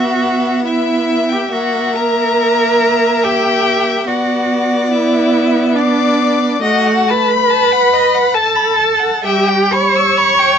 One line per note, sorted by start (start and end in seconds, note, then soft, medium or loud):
0.00 1.49 B3 medium
0.00 0.66 F#4 loud
0.00 0.63 E5 medium
0.00 0.68 F#5 medium
0.66 1.34 E4 medium
0.66 1.50 E5 medium
0.66 1.31 E5 medium
1.29 1.54 G4 medium
1.29 1.49 G5 medium
1.50 4.03 A#3 medium
1.50 1.97 F#4 medium
1.50 4.09 E5 medium
1.50 1.97 F#5 medium
1.95 3.26 A#4 loud
1.95 3.25 A#5 loud
3.24 4.09 G4 loud
3.24 4.06 G5 loud
4.06 6.59 B3 medium
4.06 4.92 F#4 medium
4.06 5.75 D5 medium
4.06 4.94 F#5 medium
4.92 5.77 E4 loud
4.92 5.78 E5 medium
5.75 6.63 D4 medium
5.75 6.61 D5 medium
5.75 6.63 D5 medium
6.62 7.38 A3 medium
6.62 7.12 F#4 loud
6.62 6.88 D#5 medium
6.62 7.11 F#5 loud
6.86 7.10 F#5 medium
7.08 8.36 B4 loud
7.08 7.32 A5 medium
7.08 8.36 B5 loud
7.30 7.51 B5 medium
7.50 7.74 A5 medium
7.72 7.95 F#5 medium
7.93 8.16 D#5 medium
8.14 8.36 F#5 medium
8.34 9.25 A4 loud
8.34 8.57 A5 medium
8.34 9.23 A5 loud
8.56 8.78 B5 medium
8.76 9.01 A5 medium
8.99 9.23 F#5 medium
9.23 10.01 G3 medium
9.23 9.73 G4 loud
9.23 9.50 E5 medium
9.23 9.74 G5 loud
9.48 9.74 G5 medium
9.72 10.59 C#5 loud
9.72 9.97 B5 medium
9.72 10.59 C#6 loud
9.95 10.19 E6 medium
10.17 10.40 B5 medium
10.39 10.59 G5 medium